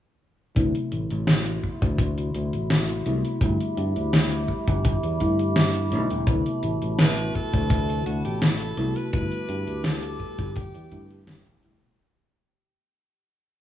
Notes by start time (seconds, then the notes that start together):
0.55 D2 C3 F#3 A3 B3 E4 F#4 E5 B5 C6, kick, closed hi-hat
0.75 closed hi-hat
0.92 A1, closed hi-hat
1.10 A1, closed hi-hat
1.27 snare, closed hi-hat
1.46 closed hi-hat
1.63 kick
1.82 D2, kick, closed hi-hat
1.98 kick, closed hi-hat
2.18 closed hi-hat
2.35 D2, closed hi-hat
2.53 A1, closed hi-hat
2.70 snare, closed hi-hat
2.89 closed hi-hat
3.06 C2 C3 F#3 A3 B3 E4, closed hi-hat
3.25 closed hi-hat
3.41 G1 D3 G3 A3 B3 E4 G4 D6, kick, closed hi-hat
3.60 closed hi-hat
3.77 G2, closed hi-hat
3.96 D2, closed hi-hat
4.13 snare, closed hi-hat
4.32 closed hi-hat
4.48 kick
4.67 G1, kick, closed hi-hat
4.85 kick, closed hi-hat
5.03 E2, closed hi-hat
5.20 G2 D3 G3 A3 B3 E4, kick, closed hi-hat
5.39 closed hi-hat
5.56 snare, closed hi-hat
5.75 closed hi-hat
5.91 B1 D3 G3 A3 B3 E4, closed hi-hat
6.10 E1, closed hi-hat
6.26 D2 C3 F#3 A3 B3 E4 F#4 A5, kick, closed hi-hat
6.46 closed hi-hat
6.63 A1, closed hi-hat
6.82 A1, closed hi-hat
6.99 B4, snare, closed hi-hat
7.18 closed hi-hat
7.35 A4, kick
7.53 D2, kick, closed hi-hat
7.70 kick, closed hi-hat
7.89 closed hi-hat
8.06 D2 F#4, closed hi-hat
8.25 A1 G4, closed hi-hat
8.42 A4, snare, closed hi-hat
8.60 closed hi-hat
8.77 C2 C3 F#3 A3 B3 E4, closed hi-hat
8.96 B4, closed hi-hat
9.12 G1 D3 G3 A3 B3 E4 G4 B4 D6, kick, closed hi-hat
9.32 closed hi-hat
9.49 G2, closed hi-hat
9.67 D2, closed hi-hat
9.84 A4, snare, closed hi-hat
10.03 closed hi-hat
10.20 kick
10.39 G1, kick, closed hi-hat
10.55 G4, kick, closed hi-hat
10.74 E2, closed hi-hat
10.91 G2 D3 G3 A3 B3 E4, kick, closed hi-hat
11.11 closed hi-hat
11.27 snare, closed hi-hat
11.46 E1, closed hi-hat
11.63 D3 G3 A3 B3 E4, closed hi-hat
11.82 B1, closed hi-hat